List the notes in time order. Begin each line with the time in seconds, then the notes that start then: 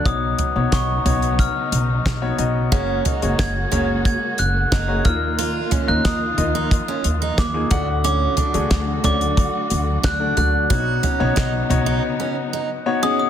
Already playing: F#3
0.06 B1 C#3 B3 D#4 F#4 C#5 D#6, kick, closed hi-hat
0.39 closed hi-hat, floor tom
0.56 B1 B3 D#4 F#4 C#5
0.72 B1 C#6, kick, snare, clap, closed hi-hat
1.05 B1 B3 D#4 F#4 C#5, closed hi-hat, floor tom
1.22 closed hi-hat
1.39 F6, kick, closed hi-hat
1.72 B1, closed hi-hat
2.06 B1, kick, snare, clap, closed hi-hat
2.22 B3 D#4 F#4 C#5
2.38 B1 B3 D#4 F#4 D#5, closed hi-hat
2.71 F#1 C#3 G#3 A#3 C#4 F#4 G#4 C#5, kick, closed hi-hat
3.05 D#4, closed hi-hat, floor tom
3.22 F#1 A#3 F#4 G#4 C#5, closed hi-hat
3.39 F#1 G#6, kick, snare, clap, closed hi-hat
3.72 F#1 A#3 C#4 F#4 G#4 C#5, closed hi-hat, floor tom
4.05 G#6, kick, closed hi-hat
4.38 F#1 F#6, closed hi-hat
4.72 F#1 D#4, kick, snare, clap, closed hi-hat
4.88 A#3 F#4 G#4 C#5
5.04 D#2 A#2 D#3 F3 A#3 D#4 F4 D#5 F6, kick, closed hi-hat
5.39 F4, closed hi-hat
5.71 C#4, closed hi-hat, floor tom
5.87 D#2 A#3 D#4 F4 D#5 F#6
6.05 D#2 D#4 D#6, kick, snare, clap, closed hi-hat
6.37 D#2 A#3 D#4 F4 D#5, closed hi-hat, floor tom
6.55 D#4
6.71 kick, closed hi-hat
6.88 C#4
7.04 D#2, closed hi-hat
7.22 D#4
7.38 D#2 D6, kick, snare, clap, closed hi-hat
7.54 A#3 D#4 F4 G#4
7.71 D2 A2 D3 F#3 A3 D4 F#4 F#5, kick, closed hi-hat, floor tom
8.04 C#4 D6, closed hi-hat
8.37 D4, closed hi-hat, floor tom
8.54 D2 A3 D4 F#4 G#4, closed hi-hat
8.71 D2, kick, snare, clap, closed hi-hat
9.04 D2 A3 C#4 D4 F#4 D5 D6, closed hi-hat, floor tom
9.21 closed hi-hat
9.37 kick, closed hi-hat
9.70 D2, closed hi-hat
10.03 D2 D4 F#6, kick, snare, clap, closed hi-hat
10.20 A3 D4 F#4 D5
10.37 D2 A3 D4 F#4 D5 F#6, closed hi-hat, floor tom
10.70 B1 C#3 B3 D#4 F#4 C#5, kick, closed hi-hat
11.03 C#4, closed hi-hat, floor tom
11.20 B1 B3 D#4 F#4 C#5
11.36 B1 D#4, kick, snare, clap, closed hi-hat
11.70 B1 B3 D#4 F#4 C#5, closed hi-hat, floor tom
11.86 D#4
12.20 C#4
12.53 D#4
12.86 B3 D#4 F#4 C#5
13.02 B3 C#4 D#4 F#4 G#4 D#6
13.19 D#6